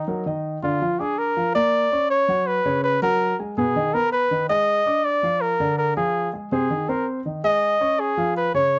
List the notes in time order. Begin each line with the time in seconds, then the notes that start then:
Already playing: D#4
0.08 F#3 F#4 A#4
0.26 D#3 D#4 D#5
0.63 D3 D4 F4 D5
0.82 F3 F4 F5
1.00 D4 G#4 D5 D6
1.19 A#4
1.37 F3 F4 F5
1.55 A#3 A#4 D5 A#5
1.92 C#4 C#5 C#6
2.10 C#5
2.28 F#3 F#4 F#5
2.47 B4
2.65 C#3 C#4 C#5
2.84 B4
3.02 F#3 F#4 A#4 F#5
3.39 G#3 G#4 G#5
3.57 B2 B3 G#4 B4
3.76 D#3 D#4 D#5
3.94 B3 A#4 B4 B5
4.13 B4
4.31 D#3 D#4 D#5
4.49 G#3 G#4 D#5 G#5
4.86 D4 D5 D6
5.05 D5
5.23 F3 F4 F5
5.41 A#4
5.60 D3 D4 D5
5.78 A#4
5.97 F3 F4 G#4 F5
6.33 G#3 G#4 G#5
6.52 C3 C4 G#4 C5
6.70 D#3 D#4 D#5
6.89 C4 A#4 C5 C6
7.26 D#3 D#4 D#5
7.44 G#3 G#4 D#5 G#5
7.81 C#4 C#5 C#6
8.00 G#4
8.17 F3 F4 F5
8.37 B4
8.54 C#3 C#4 C#5